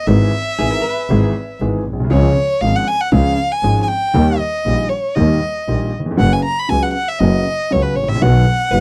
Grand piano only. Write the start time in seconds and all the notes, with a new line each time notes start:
0.08 G#1 G#2 E3 G#3 B3 G#4
0.59 G#1 G#2 E3 G#3 B3 G#4
1.10 G#1 G#2 E3 G#3 B3 G#4
1.61 G#1 G#2 E3 G#3 B3 G#4
1.93 A#1
2.00 B1
2.04 C2
2.10 C#2 C#3 F3 G#3 C#4 G#4
2.62 G#1 G#2 F3 G#3 C#4 G#4
3.12 C#2 C#3 F3 G#3 C#4 G#4
3.63 G#1 G#2 F3 G#3 C#4 G#4
4.13 D#2 D#3 G3 A#3 G4
4.66 A#1 A#2 D#3 G3 A#3 G4
5.16 D#2 D#3 G3 A#3 G4
5.68 A#1 A#2 D#3 G3 A#3 G4
6.00 D#2
6.06 E2
6.11 F2
6.17 F#2 C#3 F#3 B3 F#4
6.69 C#2 C#3 F#3 B3 F#4
7.20 F#2 C#3 F#3 B3 F#4
7.71 C#2 C#3 F#3 B3 F#4
8.03 G#1
8.08 A1
8.14 A#1
8.21 B1 B2 D#3 F#3 B3 F#4
8.73 F#1 F#2 D#3 F#3 B3 F#4